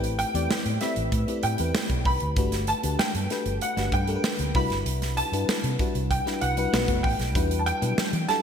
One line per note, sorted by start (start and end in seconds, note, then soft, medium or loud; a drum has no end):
0.00 0.23 A1 medium
0.00 0.29 A3 medium
0.00 0.29 C4 medium
0.00 0.29 E4 medium
0.00 0.29 G4 medium
0.00 0.29 B4 medium
0.00 0.15 G5 loud
0.00 closed hi-hat medium
0.19 0.77 G5 loud
0.19 closed hi-hat medium
0.34 0.46 E2 medium
0.34 0.75 A3 medium
0.34 0.75 C4 medium
0.34 0.76 E4 medium
0.34 0.76 G4 medium
0.34 0.76 D5 medium
0.34 closed hi-hat medium
0.50 muted fingered electric bass stroke soft
0.50 snare loud
0.66 0.77 A2 loud
0.66 closed hi-hat medium
0.81 1.22 A3 medium
0.81 1.22 C4 medium
0.81 1.22 E4 medium
0.81 1.23 G4 medium
0.81 1.23 B4 medium
0.81 1.45 E5 loud
0.81 snare soft
0.81 closed hi-hat medium
0.96 1.08 A1 medium
0.96 closed hi-hat soft
1.12 1.24 A2 loud
1.12 kick medium
1.12 closed hi-hat medium
1.28 1.55 A3 medium
1.28 1.55 C4 medium
1.28 1.55 E4 medium
1.28 1.56 G4 medium
1.28 1.56 B4 medium
1.28 closed hi-hat soft
1.43 1.55 A2 medium
1.43 2.08 G5 loud
1.43 closed hi-hat medium
1.58 1.71 E2 medium
1.58 2.27 A3 medium
1.58 2.27 C4 medium
1.58 2.28 E4 medium
1.58 2.28 G4 medium
1.58 2.28 B4 medium
1.58 closed hi-hat medium
1.75 snare loud
1.89 2.05 B1 medium
1.89 kick medium
1.89 closed hi-hat medium
2.05 2.17 C2 medium
2.05 2.70 B5 loud
2.05 kick medium
2.05 open hi-hat medium
2.20 2.33 D2 medium
2.20 closed hi-hat medium
2.36 2.72 G1 loud
2.36 2.78 A3 medium
2.36 2.78 D4 medium
2.36 2.78 F#4 medium
2.36 2.78 G4 medium
2.36 2.79 B4 medium
2.36 kick loud
2.36 closed hi-hat medium
2.52 snare soft
2.52 closed hi-hat medium
2.67 3.00 A5 loud
2.67 closed hi-hat medium
2.83 2.95 D2 medium
2.83 3.24 A3 medium
2.83 3.24 D4 medium
2.83 3.25 F#4 medium
2.83 3.25 G4 medium
2.83 3.25 B4 medium
2.83 closed hi-hat medium
2.99 3.57 G5 loud
2.99 muted fingered electric bass stroke medium
2.99 snare loud
3.15 3.26 G2 medium
3.15 closed hi-hat medium
3.30 3.71 A3 medium
3.30 3.71 D4 medium
3.30 3.72 G4 medium
3.30 3.71 A4 medium
3.30 3.72 B4 medium
3.30 snare soft
3.30 closed hi-hat medium
3.46 3.57 G1 medium
3.46 closed hi-hat soft
3.61 3.94 F#5 loud
3.61 closed hi-hat medium
3.76 3.88 G1 loud
3.76 4.04 A3 medium
3.76 4.04 D4 medium
3.76 4.04 F#4 medium
3.76 4.04 G4 medium
3.76 4.05 B4 medium
3.76 snare soft
3.76 closed hi-hat soft
3.92 4.16 G2 medium
3.92 4.51 G5 loud
3.92 kick medium
3.92 closed hi-hat medium
4.07 4.55 A3 medium
4.07 4.54 D4 medium
4.07 4.55 G4 medium
4.07 4.55 A4 medium
4.07 4.15 A#4 medium
4.07 closed hi-hat soft
4.16 4.55 B4 medium
4.24 snare loud
4.39 4.51 D2 medium
4.39 closed hi-hat medium
4.55 4.67 C2 medium
4.55 5.23 G3 medium
4.55 5.23 D4 medium
4.55 5.24 E4 medium
4.55 5.24 F#4 medium
4.55 5.24 B4 medium
4.55 5.19 B5 loud
4.55 kick loud
4.55 open hi-hat medium
4.70 4.82 G1 medium
4.70 snare soft
4.70 closed hi-hat medium
4.86 5.21 C2 medium
4.86 closed hi-hat medium
5.02 snare soft
5.02 closed hi-hat medium
5.17 6.13 A5 loud
5.17 closed hi-hat medium
5.32 5.44 G2 medium
5.32 5.74 G3 medium
5.32 5.74 D4 medium
5.32 5.74 E4 medium
5.32 5.74 F#4 medium
5.32 5.74 B4 medium
5.32 closed hi-hat medium
5.48 muted fingered electric bass stroke soft
5.48 snare loud
5.64 5.75 C3 medium
5.64 closed hi-hat medium
5.79 6.20 G3 medium
5.79 6.20 D4 medium
5.79 6.20 E4 medium
5.79 6.21 F#4 medium
5.79 6.21 B4 medium
5.79 kick loud
5.79 closed hi-hat medium
5.95 6.18 C2 medium
5.95 closed hi-hat medium
6.11 6.43 G5 loud
6.11 kick medium
6.11 closed hi-hat medium
6.26 6.53 G3 medium
6.26 6.54 D4 medium
6.26 6.54 E4 medium
6.26 6.54 F#4 medium
6.26 6.54 B4 medium
6.26 snare soft
6.26 closed hi-hat soft
6.41 6.65 C2 medium
6.41 7.06 F#5 loud
6.41 closed hi-hat medium
6.57 6.73 G3 medium
6.57 6.73 D4 medium
6.57 6.73 E4 medium
6.57 6.72 F#4 medium
6.57 6.72 B4 medium
6.57 closed hi-hat soft
6.72 6.85 B1 loud
6.72 7.27 A3 medium
6.72 7.27 B3 medium
6.72 7.28 D#4 medium
6.72 7.28 F#4 medium
6.72 7.28 B4 medium
6.72 snare loud
6.88 7.00 F#1 loud
6.88 kick medium
6.88 closed hi-hat medium
7.03 7.16 A1 medium
7.03 7.61 G5 loud
7.03 kick loud
7.03 open hi-hat medium
7.19 7.35 B1 medium
7.19 snare soft
7.19 closed hi-hat medium
7.35 7.70 E2 medium
7.35 7.76 G3 medium
7.35 7.76 D4 medium
7.35 7.76 E4 medium
7.35 7.76 F#4 medium
7.35 7.77 B4 medium
7.35 kick loud
7.35 closed hi-hat medium
7.51 closed hi-hat medium
7.59 7.66 A5 medium
7.66 8.30 G5 loud
7.66 closed hi-hat medium
7.81 7.94 B2 medium
7.81 8.23 F#3 medium
7.81 8.23 G3 medium
7.81 8.23 D4 medium
7.81 8.23 E4 medium
7.81 8.23 B4 medium
7.81 closed hi-hat medium
7.98 muted fingered electric bass stroke soft
7.98 snare loud
8.13 8.25 E3 loud
8.13 closed hi-hat medium
8.28 8.42 G3 medium
8.28 8.42 D4 medium
8.28 8.42 E4 medium
8.28 8.42 F#4 medium
8.28 8.42 A4 medium
8.28 8.42 A5 loud
8.28 snare soft
8.28 closed hi-hat medium